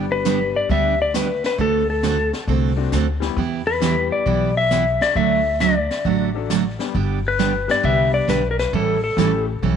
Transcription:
Already playing: G1 G3 B3 D4 G4
0.12 B4
0.25 D3 G3 B3 D4 G4, snare, hi-hat pedal
0.56 D5
0.69 D2 D3 G3 B3 D4 G4 E5, brush sweep, kick
1.02 D5
1.14 D3 G3 B3 D4 G4 B4, snare, hi-hat pedal
1.44 B4, snare
1.58 D2 D3 A3 C4 F#4 A4, brush sweep, kick
1.90 A4
2.03 D3 A3 C4 F#4 A4, snare, hi-hat pedal
2.33 snare
2.48 C2 D3 A3 C4 F#4 A4, brush sweep, kick
2.76 A3 C4 D4 F#4
2.92 D2 D3 A3 C4 F#4 A4, snare, hi-hat pedal
3.20 G3 B3 E4 G4, snare
3.36 E2 E3 B3 E4 G4, brush sweep, kick
3.67 B4
3.80 E3 G3 B3 E4 G4, snare, hi-hat pedal
4.12 D5
4.26 B1 E3 B3 E4 G4, brush sweep, kick
4.57 E5
4.71 E3 B3 E4 G4, snare, hi-hat pedal
5.01 D5, snare
5.15 D2 D3 F#3 A3 D4 F#4 E5, brush sweep, kick
5.60 D3 F#3 A3 D4 F#4 D5, snare, hi-hat pedal
5.91 snare
6.05 A1 D3 F#3 A3 D4 F#4, brush sweep, kick
6.34 F#3 A3 D4 A4
6.50 D3 F#3 A3 D4 F#4, snare, hi-hat pedal
6.79 G3 B3 D4 G4, snare
6.95 G1 D3 G3 B3 D4 G4, brush sweep, kick
7.28 B4
7.39 D3 G3 B3 D4 G4, snare, hi-hat pedal
7.68 G3 B3 D4 G4 D5, snare
7.83 C2 D3 G3 B3 D4 G4 E5, brush sweep, kick
8.14 D5
8.28 B1 D3 G3 B3 D4 G4 B4, snare, hi-hat pedal
8.51 A#4
8.59 B4, snare
8.73 A1 E3 G3 C#4 E4 A4, brush sweep, kick
9.04 A4
9.17 A1 E3 G3 A3 C#4 E4 G4 A4, snare, hi-hat pedal
9.63 B1 E3 G3 C#4 E4 A4, brush sweep, kick

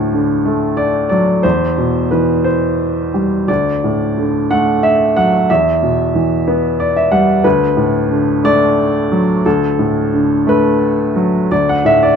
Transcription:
Already playing: D2 A2
0.13 D3
0.45 A3
0.77 D5
1.09 F#3 D5
1.43 E2 C5
1.78 B2
2.11 E3 B4
2.44 C5
3.14 G3
3.48 D2 D5
3.84 A2
4.18 D3
4.51 A3 F#5
4.83 E5
5.17 F#3 F#5
5.50 E2 E5
5.83 B2
6.15 E3
6.48 B3
6.80 D5
6.96 E5
7.12 G3 F#5
7.44 D2 B4
7.77 A2
8.11 D3
8.44 A3 D5
9.12 F#3
9.46 D2 A4
9.79 A2
10.13 D3
10.47 A3 B4
11.16 F#3
11.51 D2 D5
11.69 F#5
11.85 A2 E5
12.03 D5

